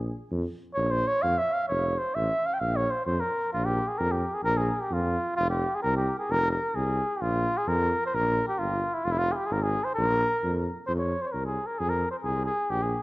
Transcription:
0.00 0.10 A#1 medium
0.32 0.44 F2 loud
0.74 1.03 A#1 loud
0.74 0.93 C#5 loud
0.91 1.09 C5 loud
1.07 1.24 C#5 loud
1.22 1.36 F2 medium
1.22 1.40 F5 loud
1.38 1.55 E5 loud
1.53 1.68 F5 loud
1.68 1.95 F1 medium
1.68 2.00 C#5 loud
1.98 2.16 C5 medium
2.15 2.29 A1 medium
2.15 2.47 E5 loud
2.46 2.55 F5 loud
2.54 2.61 G5 medium
2.60 2.86 A#1 medium
2.60 2.77 F5 medium
2.76 2.92 C#5 medium
2.90 3.05 C5 medium
3.06 3.19 F2 loud
3.06 3.22 C5 medium
3.20 3.52 A#4 medium
3.53 3.79 A#1 loud
3.53 3.67 F4 loud
3.65 3.90 G4 medium
3.88 4.00 G#4 medium
3.98 4.25 F2 medium
3.98 4.13 A#4 loud
4.12 4.36 G4 medium
4.34 4.44 G#4 medium
4.44 4.70 A#1 loud
4.44 4.59 A#4 loud
4.58 4.82 G#4 medium
4.81 4.95 G4 medium
4.91 5.16 F2 medium
4.91 5.35 F4 medium
5.36 5.63 F1 loud
5.36 5.48 F4 loud
5.50 5.76 G4 medium
5.75 5.82 G#4 medium
5.82 6.09 C2 loud
5.82 5.94 A#4 loud
5.96 6.17 G4 medium
6.19 6.32 G#4 loud
6.30 6.55 F1 loud
6.30 6.51 A#4 loud
6.51 6.77 A#4 medium
6.75 7.00 C2 medium
6.75 7.18 G#4 loud
7.16 7.23 G4 medium
7.21 7.46 A#1 loud
7.21 7.59 F4 loud
7.57 7.70 G#4 loud
7.67 7.92 F2 loud
7.67 8.03 A#4 loud
8.06 8.16 C5 medium
8.14 8.39 A#1 loud
8.14 8.47 A#4 loud
8.48 8.60 G4 medium
8.59 8.84 G1 medium
8.59 8.95 F4 loud
8.94 9.06 E4 medium
9.04 9.30 F1 loud
9.04 9.13 F4 loud
9.12 9.20 E4 loud
9.19 9.33 F4 loud
9.32 9.37 G#4 medium
9.36 9.48 G4 medium
9.46 9.54 G#4 medium
9.51 9.76 G#1 loud
9.51 9.64 A#4 medium
9.63 9.85 G#4 loud
9.84 9.94 C5 medium
9.95 10.22 A#1 loud
9.95 10.60 A#4 loud
10.44 10.68 F2 medium
10.86 11.13 F2 loud
10.86 10.92 C5 loud
10.99 11.23 C#5 medium
11.22 11.27 C5 loud
11.22 11.29 C#5 medium
11.28 11.34 C5 medium
11.32 11.59 C2 medium
11.32 11.45 A#4 medium
11.46 11.68 G#4 medium
11.67 11.80 A#4 medium
11.79 12.05 F2 medium
11.79 11.91 G#4 loud
11.90 12.11 A#4 medium
12.11 12.16 C5 medium
12.23 12.49 C2 medium
12.23 12.45 G#4 loud
12.46 12.72 G#4 loud
12.70 12.95 A#1 medium
12.70 12.84 G4 loud
12.82 13.03 G#4 medium

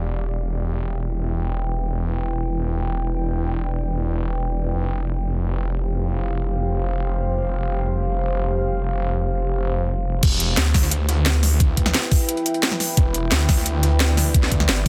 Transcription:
0.00 4.73 E1 medium
0.00 4.70 E4 medium
0.00 4.70 B4 medium
0.00 1.97 E5 medium
0.00 4.70 G5 medium
2.00 4.72 D5 medium
4.74 10.21 F1 medium
4.74 10.19 G4 medium
4.74 10.19 C5 medium
4.74 10.19 F5 medium
10.23 10.56 E1 loud
10.23 14.88 E4 medium
10.23 14.88 B4 medium
10.23 12.95 E5 medium
10.23 14.88 G5 medium
10.23 kick loud
10.23 closed hi-hat medium
10.23 closed hi-hat loud
10.23 crash loud
10.40 closed hi-hat medium
10.57 11.93 D2 loud
10.57 snare loud
10.57 closed hi-hat loud
10.57 closed hi-hat medium
10.74 kick loud
10.74 snare medium
10.74 closed hi-hat medium
10.74 open hi-hat medium
10.83 snare medium
10.91 closed hi-hat loud
10.91 closed hi-hat medium
11.09 snare soft
11.09 closed hi-hat medium
11.26 snare loud
11.26 closed hi-hat medium
11.26 closed hi-hat loud
11.43 snare soft
11.43 closed hi-hat medium
11.43 open hi-hat medium
11.60 kick loud
11.60 closed hi-hat medium
11.77 kick medium
11.77 closed hi-hat medium
11.86 snare medium
11.94 snare loud
11.94 closed hi-hat medium
11.94 closed hi-hat loud
12.03 closed hi-hat soft
12.11 kick loud
12.11 closed hi-hat medium
12.11 open hi-hat medium
12.29 closed hi-hat medium
12.29 closed hi-hat loud
12.37 closed hi-hat soft
12.46 closed hi-hat medium
12.54 closed hi-hat soft
12.63 snare loud
12.63 closed hi-hat medium
12.63 closed hi-hat loud
12.71 snare soft
12.71 snare medium
12.80 snare soft
12.80 open hi-hat medium
12.97 13.30 E1 loud
12.97 14.88 D5 medium
12.97 kick loud
12.97 closed hi-hat medium
13.14 closed hi-hat medium
13.32 14.67 D2 medium
13.32 snare loud
13.32 closed hi-hat medium
13.49 kick loud
13.49 snare medium
13.49 closed hi-hat medium
13.49 open hi-hat medium
13.57 snare medium
13.66 closed hi-hat medium
13.83 snare soft
13.83 closed hi-hat medium
14.00 snare loud
14.00 closed hi-hat medium
14.17 snare soft
14.17 closed hi-hat medium
14.17 open hi-hat medium
14.34 kick loud
14.34 closed hi-hat medium
14.43 snare soft
14.52 kick medium
14.52 closed hi-hat medium
14.60 snare medium
14.69 14.88 G1 loud
14.69 snare loud
14.69 closed hi-hat medium
14.77 closed hi-hat soft

